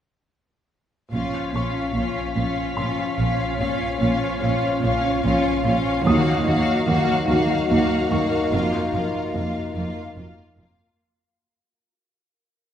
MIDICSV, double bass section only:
0, 0, Header, 1, 2, 480
1, 0, Start_track
1, 0, Key_signature, -5, "minor"
1, 0, Tempo, 821918
1, 661, Time_signature, 3, 2, 24, 8
1, 7439, End_track
2, 0, Start_track
2, 0, Title_t, "Double bass section"
2, 0, Program_c, 0, 48
2, 663, Note_on_c, 0, 34, 25
2, 710, Note_off_c, 0, 34, 0
2, 900, Note_on_c, 0, 34, 26
2, 947, Note_off_c, 0, 34, 0
2, 1138, Note_on_c, 0, 34, 29
2, 1185, Note_off_c, 0, 34, 0
2, 1381, Note_on_c, 0, 34, 25
2, 1428, Note_off_c, 0, 34, 0
2, 1620, Note_on_c, 0, 34, 31
2, 1667, Note_off_c, 0, 34, 0
2, 1863, Note_on_c, 0, 34, 34
2, 1910, Note_off_c, 0, 34, 0
2, 2102, Note_on_c, 0, 34, 30
2, 2149, Note_off_c, 0, 34, 0
2, 2341, Note_on_c, 0, 34, 34
2, 2388, Note_off_c, 0, 34, 0
2, 2584, Note_on_c, 0, 34, 41
2, 2631, Note_off_c, 0, 34, 0
2, 2826, Note_on_c, 0, 34, 39
2, 2873, Note_off_c, 0, 34, 0
2, 3063, Note_on_c, 0, 34, 50
2, 3110, Note_off_c, 0, 34, 0
2, 3303, Note_on_c, 0, 34, 47
2, 3350, Note_off_c, 0, 34, 0
2, 3541, Note_on_c, 0, 39, 51
2, 3587, Note_off_c, 0, 39, 0
2, 3780, Note_on_c, 0, 39, 53
2, 3827, Note_off_c, 0, 39, 0
2, 4017, Note_on_c, 0, 39, 62
2, 4064, Note_off_c, 0, 39, 0
2, 4257, Note_on_c, 0, 39, 52
2, 4304, Note_off_c, 0, 39, 0
2, 4501, Note_on_c, 0, 39, 49
2, 4547, Note_off_c, 0, 39, 0
2, 4743, Note_on_c, 0, 39, 38
2, 4789, Note_off_c, 0, 39, 0
2, 4983, Note_on_c, 0, 29, 35
2, 5030, Note_off_c, 0, 29, 0
2, 5218, Note_on_c, 0, 29, 30
2, 5265, Note_off_c, 0, 29, 0
2, 5465, Note_on_c, 0, 29, 31
2, 5511, Note_off_c, 0, 29, 0
2, 5707, Note_on_c, 0, 29, 24
2, 5754, Note_off_c, 0, 29, 0
2, 5941, Note_on_c, 0, 29, 28
2, 5988, Note_off_c, 0, 29, 0
2, 6181, Note_on_c, 0, 29, 26
2, 6227, Note_off_c, 0, 29, 0
2, 7439, End_track
0, 0, End_of_file